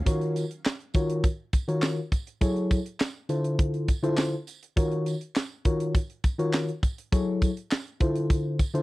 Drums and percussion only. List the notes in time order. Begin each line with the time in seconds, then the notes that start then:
0.06 kick, closed hi-hat, tambourine
0.21 closed hi-hat
0.36 closed hi-hat, tambourine
0.51 closed hi-hat
0.65 snare, clap, tambourine
0.80 closed hi-hat
0.94 kick, closed hi-hat, tambourine
1.10 closed hi-hat
1.24 kick, closed hi-hat, tambourine
1.53 kick, closed hi-hat, tambourine
1.69 closed hi-hat
1.82 snare, clap, tambourine
2.12 kick, closed hi-hat, tambourine
2.27 closed hi-hat
2.41 kick, closed hi-hat, tambourine
2.56 closed hi-hat
2.71 kick, closed hi-hat, tambourine
2.86 closed hi-hat
3.00 snare, clap, tambourine
3.29 closed hi-hat, tambourine
3.44 closed hi-hat
3.59 kick, closed hi-hat
3.74 closed hi-hat
3.88 kick, closed hi-hat, tambourine
4.04 closed hi-hat
4.17 snare, clap, tambourine
4.47 closed hi-hat, tambourine
4.63 closed hi-hat
4.77 kick, closed hi-hat, tambourine
4.91 closed hi-hat
5.06 closed hi-hat, tambourine
5.21 closed hi-hat
5.35 snare, clap, tambourine
5.65 kick, closed hi-hat
5.80 closed hi-hat
5.95 kick, closed hi-hat, tambourine
6.10 closed hi-hat
6.24 kick, closed hi-hat, tambourine
6.39 closed hi-hat
6.53 snare, clap, tambourine
6.69 closed hi-hat
6.83 kick, closed hi-hat, tambourine
6.98 closed hi-hat
7.12 kick, closed hi-hat, tambourine
7.42 kick, closed hi-hat, tambourine
7.57 closed hi-hat
7.71 snare, clap, tambourine
7.87 closed hi-hat
8.00 kick, closed hi-hat
8.16 closed hi-hat
8.30 kick, closed hi-hat, tambourine
8.59 kick, closed hi-hat, tambourine
8.75 closed hi-hat